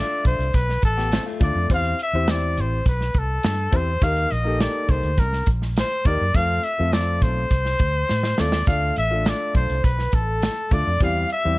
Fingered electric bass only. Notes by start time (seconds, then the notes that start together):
0.25 B1
0.39 C2
0.54 B1
0.83 A1
1.41 D2
1.55 F2
1.70 E2
2.13 E2
2.58 A1
2.86 B1
3.15 C2
3.45 G2
3.73 E2
4.02 D#2
4.32 A#1
4.89 C2
5.03 D2
5.18 C2
5.47 A#1
6.06 D#2
6.21 F#2
6.35 F2
6.80 F2
7.22 B1
7.51 C2
7.80 D2
8.11 A2
8.40 D#2
8.68 D2
8.98 A1
9.55 B1
9.70 C2
9.84 B1
10.13 A1
10.72 D2
10.87 F2
11.01 E2
11.45 E2